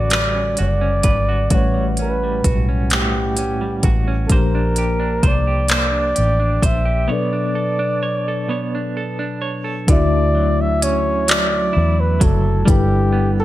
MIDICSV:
0, 0, Header, 1, 6, 480
1, 0, Start_track
1, 0, Key_signature, 2, "major"
1, 0, Tempo, 930233
1, 780, Time_signature, 6, 3, 24, 8
1, 6939, End_track
2, 0, Start_track
2, 0, Title_t, "Flugelhorn"
2, 0, Program_c, 0, 56
2, 0, Note_on_c, 0, 74, 88
2, 309, Note_off_c, 0, 74, 0
2, 318, Note_on_c, 0, 74, 98
2, 797, Note_on_c, 0, 73, 82
2, 805, Note_off_c, 0, 74, 0
2, 970, Note_off_c, 0, 73, 0
2, 1039, Note_on_c, 0, 71, 90
2, 1349, Note_off_c, 0, 71, 0
2, 1517, Note_on_c, 0, 67, 87
2, 2028, Note_off_c, 0, 67, 0
2, 2201, Note_on_c, 0, 69, 65
2, 2234, Note_on_c, 0, 70, 90
2, 2242, Note_off_c, 0, 69, 0
2, 2719, Note_on_c, 0, 74, 98
2, 2727, Note_off_c, 0, 70, 0
2, 2949, Note_off_c, 0, 74, 0
2, 2954, Note_on_c, 0, 74, 102
2, 3433, Note_on_c, 0, 76, 87
2, 3441, Note_off_c, 0, 74, 0
2, 3672, Note_on_c, 0, 74, 91
2, 3680, Note_off_c, 0, 76, 0
2, 4626, Note_off_c, 0, 74, 0
2, 5107, Note_on_c, 0, 74, 102
2, 5474, Note_on_c, 0, 76, 92
2, 5482, Note_off_c, 0, 74, 0
2, 5589, Note_on_c, 0, 73, 95
2, 5597, Note_off_c, 0, 76, 0
2, 5832, Note_on_c, 0, 74, 106
2, 5840, Note_off_c, 0, 73, 0
2, 6192, Note_on_c, 0, 71, 92
2, 6200, Note_off_c, 0, 74, 0
2, 6311, Note_on_c, 0, 69, 86
2, 6319, Note_off_c, 0, 71, 0
2, 6546, Note_off_c, 0, 69, 0
2, 6548, Note_on_c, 0, 67, 94
2, 6883, Note_off_c, 0, 67, 0
2, 6912, Note_on_c, 0, 69, 94
2, 6939, Note_off_c, 0, 69, 0
2, 6939, End_track
3, 0, Start_track
3, 0, Title_t, "Tine electric piano"
3, 0, Program_c, 1, 4
3, 0, Control_c, 1, 64, 127
3, 0, Note_on_c, 1, 50, 51
3, 0, Note_on_c, 1, 55, 55
3, 0, Note_on_c, 1, 66, 51
3, 0, Note_on_c, 1, 69, 50
3, 0, Note_on_c, 1, 71, 54
3, 753, Note_off_c, 1, 55, 0
3, 755, Note_off_c, 1, 50, 0
3, 757, Note_off_c, 1, 66, 0
3, 761, Note_off_c, 1, 69, 0
3, 764, Note_off_c, 1, 71, 0
3, 777, Note_on_c, 1, 45, 58
3, 781, Note_on_c, 1, 55, 53
3, 787, Control_c, 1, 64, 0
3, 789, Note_on_c, 1, 61, 53
3, 797, Note_on_c, 1, 78, 55
3, 801, Note_on_c, 1, 71, 65
3, 887, Control_c, 1, 64, 127
3, 2198, Note_off_c, 1, 45, 0
3, 2200, Note_off_c, 1, 55, 0
3, 2204, Note_off_c, 1, 61, 0
3, 2208, Note_off_c, 1, 78, 0
3, 2210, Note_off_c, 1, 71, 0
3, 2213, Note_on_c, 1, 58, 57
3, 2218, Note_on_c, 1, 53, 53
3, 2226, Control_c, 1, 64, 0
3, 2230, Note_on_c, 1, 62, 52
3, 2236, Note_on_c, 1, 67, 55
3, 2243, Note_on_c, 1, 72, 70
3, 2316, Control_c, 1, 64, 127
3, 3636, Note_off_c, 1, 58, 0
3, 3639, Note_off_c, 1, 53, 0
3, 3644, Note_off_c, 1, 62, 0
3, 3647, Note_off_c, 1, 67, 0
3, 3650, Note_on_c, 1, 47, 62
3, 3651, Note_off_c, 1, 72, 0
3, 3658, Note_on_c, 1, 54, 55
3, 3665, Note_on_c, 1, 62, 57
3, 3667, Control_c, 1, 64, 0
3, 3671, Note_on_c, 1, 69, 52
3, 3681, Note_on_c, 1, 71, 65
3, 3749, Control_c, 1, 64, 127
3, 5074, Note_off_c, 1, 47, 0
3, 5078, Note_off_c, 1, 54, 0
3, 5082, Note_off_c, 1, 62, 0
3, 5085, Note_off_c, 1, 69, 0
3, 5090, Note_off_c, 1, 71, 0
3, 5092, Note_on_c, 1, 50, 67
3, 5097, Note_on_c, 1, 57, 57
3, 5107, Control_c, 1, 64, 0
3, 5107, Note_on_c, 1, 64, 61
3, 5113, Note_on_c, 1, 66, 62
3, 5121, Note_on_c, 1, 76, 71
3, 5200, Control_c, 1, 64, 127
3, 6515, Note_off_c, 1, 50, 0
3, 6518, Note_off_c, 1, 57, 0
3, 6523, Note_off_c, 1, 64, 0
3, 6526, Note_off_c, 1, 66, 0
3, 6527, Note_on_c, 1, 55, 67
3, 6530, Note_off_c, 1, 76, 0
3, 6533, Note_on_c, 1, 62, 59
3, 6540, Note_on_c, 1, 64, 63
3, 6546, Control_c, 1, 64, 0
3, 6547, Note_on_c, 1, 69, 59
3, 6554, Note_on_c, 1, 71, 76
3, 6642, Control_c, 1, 64, 127
3, 6939, Note_off_c, 1, 55, 0
3, 6939, Note_off_c, 1, 62, 0
3, 6939, Note_off_c, 1, 64, 0
3, 6939, Note_off_c, 1, 69, 0
3, 6939, Note_off_c, 1, 71, 0
3, 6939, End_track
4, 0, Start_track
4, 0, Title_t, "Clean electric guitar"
4, 0, Program_c, 2, 27
4, 0, Note_on_c, 2, 55, 75
4, 0, Note_on_c, 2, 61, 59
4, 0, Note_on_c, 2, 66, 53
4, 0, Note_on_c, 2, 71, 59
4, 54, Note_off_c, 2, 55, 0
4, 56, Note_on_c, 2, 55, 67
4, 61, Note_off_c, 2, 71, 0
4, 63, Note_on_c, 2, 71, 59
4, 178, Note_off_c, 2, 61, 0
4, 180, Note_on_c, 2, 61, 49
4, 299, Note_off_c, 2, 66, 0
4, 302, Note_on_c, 2, 66, 54
4, 417, Note_off_c, 2, 61, 0
4, 419, Note_on_c, 2, 61, 57
4, 533, Note_off_c, 2, 71, 0
4, 535, Note_on_c, 2, 71, 63
4, 661, Note_off_c, 2, 66, 0
4, 663, Note_on_c, 2, 66, 56
4, 778, Note_on_c, 2, 45, 73
4, 779, Note_off_c, 2, 66, 0
4, 781, Note_on_c, 2, 66, 66
4, 894, Note_off_c, 2, 55, 0
4, 896, Note_on_c, 2, 55, 51
4, 912, Note_off_c, 2, 61, 0
4, 1027, Note_on_c, 2, 61, 54
4, 1042, Note_off_c, 2, 71, 0
4, 1151, Note_off_c, 2, 55, 0
4, 1153, Note_on_c, 2, 55, 55
4, 1257, Note_off_c, 2, 66, 0
4, 1263, Note_on_c, 2, 66, 60
4, 1380, Note_off_c, 2, 61, 0
4, 1386, Note_on_c, 2, 61, 50
4, 1499, Note_off_c, 2, 45, 0
4, 1502, Note_off_c, 2, 66, 0
4, 1510, Note_on_c, 2, 45, 71
4, 1516, Note_on_c, 2, 66, 55
4, 1631, Note_off_c, 2, 55, 0
4, 1633, Note_on_c, 2, 55, 52
4, 1740, Note_off_c, 2, 61, 0
4, 1746, Note_on_c, 2, 61, 50
4, 1861, Note_off_c, 2, 55, 0
4, 1864, Note_on_c, 2, 55, 58
4, 1976, Note_off_c, 2, 66, 0
4, 1982, Note_on_c, 2, 66, 66
4, 2097, Note_off_c, 2, 61, 0
4, 2103, Note_on_c, 2, 61, 57
4, 2224, Note_off_c, 2, 55, 0
4, 2226, Note_on_c, 2, 58, 79
4, 2229, Note_on_c, 2, 72, 69
4, 2269, Note_off_c, 2, 66, 0
4, 2270, Note_off_c, 2, 61, 0
4, 2273, Note_off_c, 2, 45, 0
4, 2347, Note_on_c, 2, 62, 56
4, 2467, Note_on_c, 2, 67, 53
4, 2576, Note_off_c, 2, 62, 0
4, 2578, Note_on_c, 2, 62, 60
4, 2693, Note_off_c, 2, 72, 0
4, 2699, Note_on_c, 2, 72, 63
4, 2818, Note_off_c, 2, 67, 0
4, 2824, Note_on_c, 2, 67, 55
4, 2939, Note_off_c, 2, 72, 0
4, 2940, Note_off_c, 2, 58, 0
4, 2946, Note_on_c, 2, 58, 74
4, 2948, Note_on_c, 2, 72, 58
4, 3052, Note_off_c, 2, 62, 0
4, 3054, Note_on_c, 2, 62, 56
4, 3167, Note_off_c, 2, 67, 0
4, 3174, Note_on_c, 2, 67, 52
4, 3299, Note_off_c, 2, 62, 0
4, 3301, Note_on_c, 2, 62, 65
4, 3413, Note_off_c, 2, 72, 0
4, 3420, Note_on_c, 2, 72, 64
4, 3531, Note_off_c, 2, 67, 0
4, 3537, Note_on_c, 2, 67, 64
4, 3650, Note_off_c, 2, 58, 0
4, 3652, Note_on_c, 2, 59, 82
4, 3657, Note_off_c, 2, 72, 0
4, 3659, Note_on_c, 2, 73, 70
4, 3706, Note_off_c, 2, 67, 0
4, 3779, Note_off_c, 2, 62, 0
4, 3781, Note_on_c, 2, 62, 57
4, 3897, Note_on_c, 2, 69, 56
4, 4018, Note_off_c, 2, 62, 0
4, 4020, Note_on_c, 2, 62, 63
4, 4140, Note_off_c, 2, 73, 0
4, 4142, Note_on_c, 2, 73, 67
4, 4271, Note_off_c, 2, 69, 0
4, 4273, Note_on_c, 2, 69, 55
4, 4376, Note_off_c, 2, 59, 0
4, 4382, Note_on_c, 2, 59, 72
4, 4387, Note_off_c, 2, 73, 0
4, 4389, Note_on_c, 2, 73, 61
4, 4512, Note_off_c, 2, 62, 0
4, 4514, Note_on_c, 2, 62, 54
4, 4626, Note_off_c, 2, 69, 0
4, 4628, Note_on_c, 2, 69, 57
4, 4740, Note_off_c, 2, 62, 0
4, 4742, Note_on_c, 2, 62, 61
4, 4856, Note_off_c, 2, 73, 0
4, 4858, Note_on_c, 2, 73, 67
4, 4974, Note_off_c, 2, 69, 0
4, 4976, Note_on_c, 2, 69, 62
4, 5102, Note_on_c, 2, 50, 89
4, 5149, Note_off_c, 2, 59, 0
4, 5340, Note_on_c, 2, 54, 62
4, 5582, Note_off_c, 2, 62, 0
4, 5584, Note_on_c, 2, 61, 61
4, 5813, Note_off_c, 2, 54, 0
4, 5819, Note_on_c, 2, 54, 67
4, 6050, Note_off_c, 2, 69, 0
4, 6053, Note_on_c, 2, 64, 63
4, 6289, Note_off_c, 2, 54, 0
4, 6295, Note_on_c, 2, 54, 66
4, 6528, Note_off_c, 2, 54, 0
4, 6530, Note_on_c, 2, 55, 87
4, 6545, Note_off_c, 2, 73, 0
4, 6590, Note_off_c, 2, 61, 0
4, 6772, Note_on_c, 2, 59, 61
4, 6908, Note_off_c, 2, 50, 0
4, 6939, Note_off_c, 2, 55, 0
4, 6939, Note_off_c, 2, 59, 0
4, 6939, Note_off_c, 2, 64, 0
4, 6939, End_track
5, 0, Start_track
5, 0, Title_t, "Fingered electric bass"
5, 0, Program_c, 3, 33
5, 0, Note_on_c, 3, 33, 78
5, 280, Note_off_c, 3, 33, 0
5, 311, Note_on_c, 3, 30, 80
5, 525, Note_off_c, 3, 30, 0
5, 543, Note_on_c, 3, 32, 81
5, 761, Note_off_c, 3, 32, 0
5, 783, Note_on_c, 3, 33, 96
5, 1241, Note_off_c, 3, 33, 0
5, 1265, Note_on_c, 3, 35, 78
5, 1962, Note_off_c, 3, 35, 0
5, 1984, Note_on_c, 3, 33, 81
5, 2201, Note_off_c, 3, 33, 0
5, 2224, Note_on_c, 3, 34, 85
5, 2681, Note_off_c, 3, 34, 0
5, 2705, Note_on_c, 3, 36, 85
5, 3162, Note_off_c, 3, 36, 0
5, 3191, Note_on_c, 3, 33, 75
5, 3405, Note_off_c, 3, 33, 0
5, 3423, Note_on_c, 3, 34, 87
5, 3641, Note_off_c, 3, 34, 0
5, 5105, Note_on_c, 3, 38, 110
5, 6042, Note_off_c, 3, 38, 0
5, 6071, Note_on_c, 3, 40, 93
5, 6285, Note_off_c, 3, 40, 0
5, 6305, Note_on_c, 3, 30, 94
5, 6522, Note_off_c, 3, 30, 0
5, 6543, Note_on_c, 3, 31, 107
5, 6939, Note_off_c, 3, 31, 0
5, 6939, End_track
6, 0, Start_track
6, 0, Title_t, "Drums"
6, 53, Note_on_c, 9, 42, 61
6, 63, Note_on_c, 9, 39, 103
6, 105, Note_off_c, 9, 42, 0
6, 115, Note_off_c, 9, 39, 0
6, 294, Note_on_c, 9, 42, 50
6, 345, Note_off_c, 9, 42, 0
6, 534, Note_on_c, 9, 42, 69
6, 537, Note_on_c, 9, 36, 83
6, 585, Note_off_c, 9, 42, 0
6, 588, Note_off_c, 9, 36, 0
6, 776, Note_on_c, 9, 42, 64
6, 778, Note_on_c, 9, 36, 100
6, 828, Note_off_c, 9, 42, 0
6, 830, Note_off_c, 9, 36, 0
6, 1016, Note_on_c, 9, 42, 47
6, 1068, Note_off_c, 9, 42, 0
6, 1261, Note_on_c, 9, 36, 83
6, 1261, Note_on_c, 9, 42, 66
6, 1313, Note_off_c, 9, 36, 0
6, 1313, Note_off_c, 9, 42, 0
6, 1498, Note_on_c, 9, 42, 61
6, 1508, Note_on_c, 9, 39, 108
6, 1549, Note_off_c, 9, 42, 0
6, 1560, Note_off_c, 9, 39, 0
6, 1737, Note_on_c, 9, 42, 49
6, 1788, Note_off_c, 9, 42, 0
6, 1977, Note_on_c, 9, 42, 70
6, 1978, Note_on_c, 9, 36, 89
6, 2028, Note_off_c, 9, 42, 0
6, 2030, Note_off_c, 9, 36, 0
6, 2216, Note_on_c, 9, 42, 63
6, 2217, Note_on_c, 9, 36, 103
6, 2268, Note_off_c, 9, 42, 0
6, 2269, Note_off_c, 9, 36, 0
6, 2456, Note_on_c, 9, 42, 48
6, 2508, Note_off_c, 9, 42, 0
6, 2699, Note_on_c, 9, 36, 91
6, 2700, Note_on_c, 9, 42, 68
6, 2751, Note_off_c, 9, 36, 0
6, 2751, Note_off_c, 9, 42, 0
6, 2933, Note_on_c, 9, 42, 64
6, 2944, Note_on_c, 9, 39, 110
6, 2985, Note_off_c, 9, 42, 0
6, 2995, Note_off_c, 9, 39, 0
6, 3178, Note_on_c, 9, 42, 53
6, 3229, Note_off_c, 9, 42, 0
6, 3418, Note_on_c, 9, 36, 91
6, 3421, Note_on_c, 9, 42, 67
6, 3470, Note_off_c, 9, 36, 0
6, 3473, Note_off_c, 9, 42, 0
6, 5099, Note_on_c, 9, 36, 112
6, 5099, Note_on_c, 9, 42, 76
6, 5150, Note_off_c, 9, 36, 0
6, 5151, Note_off_c, 9, 42, 0
6, 5585, Note_on_c, 9, 42, 84
6, 5637, Note_off_c, 9, 42, 0
6, 5822, Note_on_c, 9, 42, 72
6, 5832, Note_on_c, 9, 39, 120
6, 5873, Note_off_c, 9, 42, 0
6, 5884, Note_off_c, 9, 39, 0
6, 6301, Note_on_c, 9, 36, 96
6, 6301, Note_on_c, 9, 42, 76
6, 6352, Note_off_c, 9, 36, 0
6, 6353, Note_off_c, 9, 42, 0
6, 6540, Note_on_c, 9, 36, 111
6, 6542, Note_on_c, 9, 42, 70
6, 6592, Note_off_c, 9, 36, 0
6, 6594, Note_off_c, 9, 42, 0
6, 6939, End_track
0, 0, End_of_file